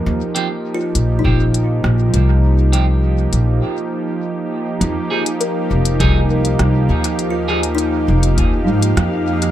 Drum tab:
HH |--x---x---x---x-|--x---x---------|x--xx--xx--xx--x|x--xx--xx--xx--x|
SD |------------r---|----------------|------------r---|------------r---|
BD |--------o-------|----------------|--------o-------|--------o-------|